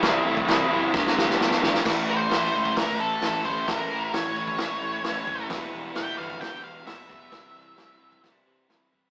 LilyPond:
<<
  \new Staff \with { instrumentName = "Lead electric guitar" } { \time 4/4 \key a \dorian \tempo 4 = 131 r1 | r8 c''4. bes'8 a'4 c''8 | bes'4 cis''2. | r4 g''8 f''8 g''8 f''8 e''4~ |
e''2 r2 | }
  \new Staff \with { instrumentName = "Overdriven electric guitar" } { \clef bass \time 4/4 \key a \dorian <c e g c' e'>8 <c e g c' e'>8 <c e g c' e'>8 <c e g c' e'>8 <g, d g b d' g'>8 <g, d g b d' g'>8 <g, d g b d' g'>8 <g, d g b d' g'>8 | <a, e a cis' e'>4 <a, e a cis' e'>8 <a, e a cis' e'>8 <a, e a cis' e'>4 <a, e a cis' e'>8 <a, e a cis' e'>8 | <a, e a cis' e'>4 <a, e a cis' e'>8 <a, e a cis' e'>8 <a, e a cis' e'>4 <a, e a cis' e'>8 <a, e a cis' e'>8 | <e, b, e g b e'>4 <e, b, e g b e'>8 <e, b, e g b e'>8 <e, b, e g b e'>4 <e, b, e g b e'>8 <e, b, e g b e'>8 |
<c e g c' e'>4 <c e g c' e'>8 <c e g c' e'>8 <c e g c' e'>4 <c e g c' e'>8 <c e g c' e'>8 | }
  \new Staff \with { instrumentName = "Picked electric bass" } { \clef bass \time 4/4 \key a \dorian c,8 a,8 c,8 fis,,8 g,,8 g,,8 g,8 aes,,8 | a,,8 a,,8 a,,8 cis,8 g,,8 a,,8 a,,8 a,,8 | a,,8 a,,8 a,,8 a,,8 a,,8 a,8 a,,8 fis,,8 | e,,8 e,,8 e,,8 g,,8 d,8 e,,8 e,,8 e,,8 |
c,8 c,8 c,8 c,8 c,8 c8 c,8 c,8 | }
  \new DrumStaff \with { instrumentName = "Drums" } \drummode { \time 4/4 <cymc bd sn>8. bd16 <cymc sn>4 <bd sn>16 sn16 sn16 sn16 sn16 sn16 sn16 sn16 | <cymc bd sn>4 <hho sn>8. bd16 <hho bd sn>4 <hho sn>8 bd8 | <hho bd sn>4 <hho sn>8. bd16 <hho bd sn>4 <hho sn>8 bd8 | <hho bd sn>4 <hho sn>8. bd16 <hho bd sn>4 <hho sn>8 bd8 |
<hho bd sn>4 <hho sn>8. bd16 <hho bd sn>4 <hho sn>8 bd8 | }
>>